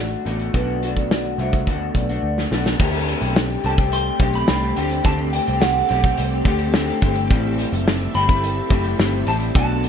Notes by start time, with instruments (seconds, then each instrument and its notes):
Already playing: picked electric bass A1, clean electric guitar A3 D4 F#4
0.25 picked electric bass A1, clean electric guitar B2 A3 D4 F#4, closed hi-hat
0.40 closed hi-hat
0.53 picked electric bass B1, clean electric guitar B2 A3 D4 F#4, vibraphone F#4 B4, kick, closed hi-hat
0.69 closed hi-hat
0.82 clean electric guitar B2 A3 D4 F#4, closed hi-hat
0.97 vibraphone B4 D5, kick, closed hi-hat
1.11 snare
1.38 picked electric bass C2, clean electric guitar B2 A3 D4 F#4, vibraphone C5 E5, closed hi-hat
1.53 kick, closed hi-hat
1.67 picked electric bass D2, clean electric guitar B2 A3 D4 F#4, kick, closed hi-hat
1.95 picked electric bass B1, vibraphone B4 D5, kick, closed hi-hat
2.09 clean electric guitar A3 D4 F#4, closed hi-hat
2.23 picked electric bass D2
2.38 snare
2.51 picked electric bass B1, clean electric guitar B2 A3 D4 F#4, snare
2.66 snare
2.79 picked electric bass D2, clean electric guitar D3 A3 C4 G4, string machine C4 G4 A4 D5, kick, crash
3.08 closed hi-hat
3.22 picked electric bass B1, closed hi-hat
3.36 snare
3.50 closed hi-hat
3.64 picked electric bass C2, clean electric guitar D3 A3 C4 G4 A5, closed hi-hat
3.77 clean electric guitar A3 C4 G4, kick, closed hi-hat
3.92 clean electric guitar C6, closed hi-hat
4.19 picked electric bass B1, clean electric guitar D3 A3 C4 G4, kick, closed hi-hat
4.34 clean electric guitar B5, closed hi-hat
4.48 picked electric bass C2, clean electric guitar D3 A3 C4 G4, snare
4.61 closed hi-hat
4.76 picked electric bass D2, clean electric guitar D3 A3 C4 G4 G5, closed hi-hat
4.90 closed hi-hat
5.04 picked electric bass D2, clean electric guitar D3 A3 C4 G4 A5, kick, closed hi-hat
5.19 closed hi-hat
5.33 clean electric guitar G5, closed hi-hat
5.47 picked electric bass C2, closed hi-hat
5.61 clean electric guitar F#5, snare
5.89 picked electric bass B1, clean electric guitar D3 A3 C4 G4, closed hi-hat
6.03 clean electric guitar A3 C4 G4, kick, closed hi-hat
6.18 picked electric bass C2, closed hi-hat
6.45 picked electric bass D2, clean electric guitar D3 A3 C4 G4, kick, closed hi-hat
6.59 closed hi-hat
6.73 clean electric guitar D3 A3 C4 G4, snare
7.01 picked electric bass G1, clean electric guitar D3 A3 C4 G4, kick, closed hi-hat
7.16 closed hi-hat
7.30 picked electric bass A1, clean electric guitar A2 G3 C4 E4, string machine E5, kick, closed hi-hat
7.59 closed hi-hat
7.73 picked electric bass F#1, closed hi-hat
7.88 snare
8.01 closed hi-hat
8.13 picked electric bass G1, clean electric guitar A2 G3 C4 E4 B5, closed hi-hat
8.27 clean electric guitar G3 C4 E4, kick, closed hi-hat
8.44 closed hi-hat
8.69 picked electric bass F#1, clean electric guitar A2 G3 C4 E4, kick, closed hi-hat
8.85 closed hi-hat
8.97 picked electric bass G1, clean electric guitar A2 G3 C4 E4, snare
9.13 closed hi-hat
9.26 picked electric bass A1, clean electric guitar A2 G3 C4 E4 A5, closed hi-hat
9.40 closed hi-hat
9.54 picked electric bass B1, clean electric guitar B2 A3 D4 F#4 A5, string machine B3 F#4 D5, kick, closed hi-hat
9.84 closed hi-hat